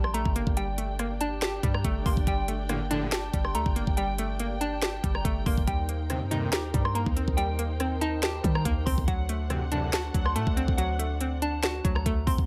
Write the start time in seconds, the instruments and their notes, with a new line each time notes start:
Already playing: 808-style bass A#1, synth pluck G3 A3 A#3 D4 G4, string section D4 G4 D5 G5
0.04 synth bell C6, cross-stick
0.14 synth pluck A3, synth bell A#5, closed hi-hat
0.25 808-style bass G1, kick
0.36 synth pluck A#3, closed hi-hat
0.47 808-style bass G1, kick
0.57 synth pluck G3, synth bell G5, closed hi-hat
0.78 synth pluck A3, closed hi-hat
0.99 synth pluck A#3, cross-stick, closed hi-hat
1.21 synth pluck D4, synth bell A5, closed hi-hat
1.42 synth pluck G4, synth bell A5, snare, closed hi-hat
1.63 808-style bass G2, synth pluck G3, kick, closed hi-hat
1.74 synth bell A#5, cross-stick
1.84 808-style bass G1, synth pluck A3, kick, closed hi-hat
2.06 808-style bass G1, synth pluck A#3, synth bell C6, kick, open hi-hat
2.17 808-style bass G1, kick
2.27 808-style bass G1, synth pluck G3, synth bell G5, kick, closed hi-hat
2.48 synth pluck A3, closed hi-hat
2.69 analog polysynth A#1 A2 D3, synth pluck A#3, cross-stick, closed hi-hat
2.91 analog polysynth A#1 A2 D3, synth pluck D4, synth bell A5, closed hi-hat
3.12 synth pluck G4, synth bell A5, snare, closed hi-hat
3.33 808-style bass G1, synth pluck G3, kick, closed hi-hat
3.45 synth bell C6, cross-stick
3.55 808-style bass D2, synth pluck A3, synth bell A#5, closed hi-hat
3.66 808-style bass G1, kick
3.76 synth pluck A#3, closed hi-hat
3.87 808-style bass G1, kick
3.97 synth pluck G3, synth bell G5, closed hi-hat
4.18 synth pluck A3, closed hi-hat
4.39 synth pluck A#3, closed hi-hat
4.61 synth pluck D4, synth bell A5, closed hi-hat
4.82 synth pluck G4, synth bell A5, snare, closed hi-hat
5.03 808-style bass G1, synth pluck G3, kick, closed hi-hat
5.15 synth bell A#5, cross-stick
5.25 808-style bass G1, synth pluck A3, kick, closed hi-hat
5.46 808-style bass G1, synth pluck A#3, synth bell C6, kick, open hi-hat
5.58 808-style bass G1, kick
5.67 808-style bass D#2, synth pluck G3, string section D#4 A#4 C5, synth bell G5, kick, closed hi-hat
5.89 synth pluck A#3, closed hi-hat
6.10 analog polysynth G1 D#2 C3, synth pluck C4, cross-stick, closed hi-hat
6.21 808-style bass G2
6.31 analog polysynth G1 D#2 C3, synth pluck D#4, synth bell A#5, closed hi-hat
6.48 808-style bass D#2
6.52 synth pluck G4, synth bell A#5, snare, closed hi-hat
6.74 808-style bass G2, synth pluck G3, kick, closed hi-hat
6.85 synth bell C6, cross-stick
6.95 synth pluck A#3, synth bell A#5, closed hi-hat
7.06 808-style bass D#2, kick
7.17 synth pluck C4, closed hi-hat
7.28 808-style bass D#2, kick
7.37 synth pluck G3, synth bell G5, closed hi-hat
7.59 synth pluck A#3, closed hi-hat
7.80 synth pluck C4, cross-stick, closed hi-hat
8.01 synth pluck D#4, synth bell A5, closed hi-hat
8.22 synth pluck G4, synth bell A5, snare, closed hi-hat
8.44 808-style bass D#3, synth pluck G3, kick, closed hi-hat
8.55 synth bell A#5, cross-stick
8.65 808-style bass D#2, synth pluck A#3, kick, closed hi-hat
8.86 808-style bass D#2, synth pluck C4, synth bell C6, kick, open hi-hat
8.98 808-style bass D#2, kick
9.08 808-style bass D2, synth pluck F#3, string section A3 D4 F#5, synth bell F#5, kick, closed hi-hat
9.29 synth pluck A3, closed hi-hat
9.50 analog polysynth A1 F#2 C3, synth pluck C4, cross-stick, closed hi-hat
9.72 analog polysynth A1 F#2 C3, synth pluck D4, synth bell A5, closed hi-hat
9.93 synth pluck F#4, synth bell A5, snare, closed hi-hat
10.14 808-style bass D2, synth pluck F#3, kick, closed hi-hat
10.25 synth bell C6, cross-stick
10.35 808-style bass A2, synth pluck A3, synth bell A5, closed hi-hat
10.47 808-style bass D2, kick
10.57 synth pluck C4, closed hi-hat
10.68 808-style bass D2, kick
10.78 synth pluck F#3, synth bell F#5, closed hi-hat
10.99 synth pluck A3, closed hi-hat
11.21 synth pluck C4, closed hi-hat
11.42 synth pluck D4, synth bell A5, closed hi-hat
11.63 synth pluck F#4, synth bell A5, snare, closed hi-hat
11.85 808-style bass D2, synth pluck F#3, kick, closed hi-hat
11.95 synth bell A#5, cross-stick
12.06 808-style bass D2, synth pluck A3, kick, closed hi-hat
12.27 808-style bass D2, synth pluck C4, synth bell C6, kick, open hi-hat
12.38 808-style bass D2, kick